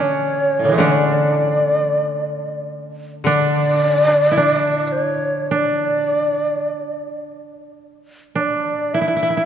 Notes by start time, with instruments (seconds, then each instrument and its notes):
Already playing: koto D3
0.00 koto C#4, shakuhachi C#5
0.59 koto A2
0.64 koto C#3 D3
0.68 koto E3 G#3
0.74 koto A3, shakuhachi E5
0.78 koto D3 C#4 D4
0.83 shakuhachi C#5
0.97 shakuhachi D5
3.24 koto D3 D4, shakuhachi D5
3.85 koto C#4
4.31 koto E4
4.37 koto D4
4.87 shakuhachi D5
4.92 shakuhachi C#5
5.47 koto D4, shakuhachi D5
8.35 koto D4, shakuhachi D5
8.93 koto E4, shakuhachi E5
9.01 koto E4
9.08 koto E4
9.16 koto E4
9.22 koto E4
9.30 koto E4
9.37 koto E4